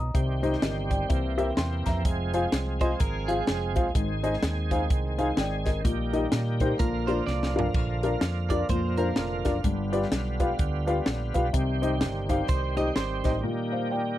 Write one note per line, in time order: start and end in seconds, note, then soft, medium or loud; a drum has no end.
0.00 0.12 B1 medium
0.00 0.11 D#5 medium
0.00 0.41 A#5 soft
0.00 0.40 D#6 medium
0.14 0.55 C2 loud
0.14 0.86 C3 medium
0.14 1.09 D#3 medium
0.14 1.09 G3 medium
0.14 3.91 C4 medium
0.14 2.03 G4 medium
0.14 kick loud
0.14 closed hi-hat medium
0.43 0.52 D#4 medium
0.43 0.52 G4 medium
0.43 0.53 C5 medium
0.43 0.53 D#5 medium
0.43 closed hi-hat medium
0.53 snare soft
0.62 1.03 G1 loud
0.62 0.90 A#4 medium
0.62 0.89 D#5 medium
0.62 snare loud
0.62 closed hi-hat medium
0.91 1.36 D5 soft
0.91 1.36 G5 medium
0.91 kick medium
0.91 closed hi-hat medium
1.09 1.50 C2 medium
1.09 1.81 C3 medium
1.09 2.04 E3 medium
1.09 2.04 A#3 medium
1.09 kick loud
1.09 closed hi-hat medium
1.38 1.47 G4 medium
1.38 1.47 A#4 medium
1.38 1.47 C5 medium
1.38 1.48 E5 medium
1.38 closed hi-hat medium
1.57 1.82 E2 medium
1.57 1.85 G5 medium
1.57 1.84 C6 medium
1.57 snare loud
1.57 closed hi-hat medium
1.86 2.02 F2 medium
1.86 2.31 E5 medium
1.86 2.31 A#5 medium
1.86 kick medium
1.86 snare soft
1.86 closed hi-hat medium
2.05 2.45 F1 loud
2.05 3.93 F3 medium
2.05 5.81 G#3 medium
2.05 5.81 G#4 medium
2.05 kick loud
2.05 closed hi-hat medium
2.34 2.43 F4 medium
2.34 2.43 G#4 medium
2.34 2.43 C5 medium
2.34 2.43 F5 medium
2.34 closed hi-hat medium
2.52 2.93 C2 loud
2.52 snare loud
2.52 closed hi-hat medium
2.81 2.90 F4 medium
2.81 2.90 G#4 medium
2.81 2.90 C5 medium
2.81 3.00 C5 medium
2.81 2.90 D#5 medium
2.81 kick medium
2.81 closed hi-hat medium
3.00 3.41 G#1 medium
3.00 3.27 A#4 medium
3.00 kick loud
3.00 closed hi-hat medium
3.28 3.38 F4 medium
3.28 3.91 G#4 medium
3.28 3.38 G#4 medium
3.28 3.38 C5 medium
3.28 3.38 F5 medium
3.28 closed hi-hat medium
3.47 3.77 F1 medium
3.47 snare loud
3.47 closed hi-hat medium
3.76 3.93 A#1 medium
3.76 3.85 F4 medium
3.76 3.85 G#4 medium
3.76 3.85 C5 medium
3.76 3.85 F5 medium
3.76 kick medium
3.76 closed hi-hat medium
3.95 4.35 G#1 loud
3.95 4.67 G#2 medium
3.95 6.77 D#3 medium
3.95 5.83 C4 medium
3.95 kick medium
3.95 closed hi-hat medium
4.23 4.33 D#4 medium
4.23 4.33 G#4 medium
4.23 4.33 C5 medium
4.23 4.33 D#5 medium
4.23 closed hi-hat medium
4.33 snare soft
4.43 4.90 D#2 medium
4.43 snare loud
4.43 closed hi-hat medium
4.71 4.80 D#4 medium
4.71 4.81 G#4 medium
4.71 4.81 C5 medium
4.71 4.81 F5 medium
4.71 kick medium
4.71 closed hi-hat medium
4.90 5.30 C2 medium
4.90 kick loud
4.90 closed hi-hat medium
5.18 5.28 D#4 medium
5.18 5.28 G#4 medium
5.18 5.28 C5 medium
5.18 5.28 F5 medium
5.18 closed hi-hat medium
5.37 5.85 G#1 medium
5.37 5.65 D5 medium
5.37 5.65 G5 medium
5.37 snare medium
5.37 closed hi-hat medium
5.66 6.11 A#4 soft
5.66 6.11 D#5 medium
5.66 kick medium
5.66 snare soft
5.66 closed hi-hat medium
5.84 6.25 A#1 loud
5.84 6.56 A#2 medium
5.84 6.79 G3 medium
5.84 9.60 A#3 medium
5.84 6.79 G4 medium
5.84 kick loud
5.84 closed hi-hat medium
6.13 6.23 D#4 medium
6.13 6.23 G4 medium
6.13 6.23 A#4 medium
6.13 6.23 D#5 medium
6.13 closed hi-hat medium
6.32 6.73 A#2 medium
6.32 snare loud
6.32 closed hi-hat loud
6.60 6.70 D#4 medium
6.60 6.70 G4 medium
6.60 6.71 A#4 medium
6.60 6.70 C5 medium
6.60 kick medium
6.60 closed hi-hat medium
6.79 7.20 A#1 medium
6.79 7.51 A#2 medium
6.79 11.50 D3 medium
6.79 9.62 F3 medium
6.79 11.50 F4 medium
6.79 7.07 A#4 medium
6.79 kick loud
6.79 closed hi-hat medium
7.07 7.17 D4 medium
7.07 7.18 F4 medium
7.07 7.18 A#4 medium
7.07 7.26 C5 medium
7.07 7.18 D5 medium
7.07 closed hi-hat medium
7.27 7.67 C2 medium
7.27 7.72 D5 medium
7.27 snare soft
7.43 snare medium
7.55 7.65 D4 medium
7.55 7.65 F4 medium
7.55 7.65 A#4 medium
7.55 7.65 F5 medium
7.55 floor tom medium
7.74 8.15 A#1 loud
7.74 kick loud
7.74 splash medium
8.03 8.13 D4 medium
8.03 8.13 F4 medium
8.03 8.13 A#4 medium
8.03 8.13 F5 medium
8.03 closed hi-hat medium
8.21 8.62 F2 loud
8.21 snare loud
8.21 closed hi-hat medium
8.50 8.60 D4 medium
8.50 8.60 F4 medium
8.50 8.60 A#4 medium
8.50 8.68 D5 medium
8.50 8.61 D5 medium
8.50 kick medium
8.50 closed hi-hat medium
8.69 9.10 F2 medium
8.69 9.42 A#2 medium
8.69 8.97 C5 medium
8.69 kick loud
8.69 closed hi-hat medium
8.97 9.08 D4 medium
8.97 9.08 F4 medium
8.97 9.61 A#4 medium
8.97 9.08 A#4 medium
8.97 9.08 C5 medium
8.97 closed hi-hat medium
9.16 9.41 F1 medium
9.16 snare medium
9.16 closed hi-hat medium
9.45 9.62 F#1 medium
9.45 9.55 D4 medium
9.45 9.55 F4 medium
9.45 9.55 A#4 medium
9.45 9.55 D5 medium
9.45 kick medium
9.45 snare soft
9.45 closed hi-hat medium
9.64 10.04 G1 loud
9.64 10.36 G2 medium
9.64 14.18 G3 medium
9.64 11.52 B3 medium
9.64 kick loud
9.64 closed hi-hat loud
9.92 10.02 F4 medium
9.92 10.02 G4 medium
9.92 10.02 B4 medium
9.92 10.02 D5 medium
9.92 closed hi-hat medium
10.02 snare soft
10.12 10.52 B1 medium
10.12 snare loud
10.12 closed hi-hat medium
10.40 10.50 F4 medium
10.40 10.50 G4 medium
10.40 10.50 B4 medium
10.40 10.50 F5 medium
10.40 kick medium
10.40 closed hi-hat medium
10.59 11.00 D2 medium
10.59 kick loud
10.59 closed hi-hat medium
10.87 10.97 F4 medium
10.87 10.97 G4 medium
10.87 10.97 B4 medium
10.87 10.97 F5 medium
10.87 closed hi-hat medium
11.06 11.31 A#1 medium
11.06 snare loud
11.06 closed hi-hat medium
11.34 11.51 B1 medium
11.34 11.44 F4 medium
11.34 11.44 G4 medium
11.34 11.44 B4 medium
11.34 11.44 F5 medium
11.34 kick medium
11.34 closed hi-hat medium
11.53 12.03 C2 loud
11.53 12.25 C3 medium
11.53 14.18 D#3 medium
11.53 13.42 C4 medium
11.53 14.18 G4 medium
11.53 kick loud
11.53 closed hi-hat loud
11.82 11.92 D#4 medium
11.82 11.92 G4 medium
11.82 11.92 C5 medium
11.82 11.92 D#5 medium
11.82 closed hi-hat medium
12.01 12.42 G1 medium
12.01 snare loud
12.01 closed hi-hat medium
12.29 12.39 D#4 medium
12.29 12.39 G4 medium
12.29 12.39 C5 medium
12.29 12.39 F5 medium
12.29 kick medium
12.29 closed hi-hat medium
12.48 12.89 C2 medium
12.48 12.76 C5 medium
12.48 kick loud
12.48 closed hi-hat medium
12.77 12.86 D#4 medium
12.77 12.86 G4 medium
12.77 12.87 C5 medium
12.77 12.87 D#5 medium
12.77 12.95 D#5 medium
12.77 closed hi-hat medium
12.96 13.20 G#1 medium
12.96 13.41 C5 medium
12.96 snare medium
12.96 closed hi-hat medium
13.24 13.41 A1 medium
13.24 13.34 D#4 medium
13.24 13.34 G4 medium
13.24 13.34 C5 medium
13.24 13.34 D#5 medium
13.24 kick medium
13.24 snare soft
13.24 closed hi-hat medium
13.43 14.15 A#2 medium
13.43 14.18 A#2 medium
13.43 14.18 A#3 medium
13.72 13.90 C5 soft
13.72 13.90 F5 medium
13.91 14.18 D5 medium
13.91 14.18 G5 medium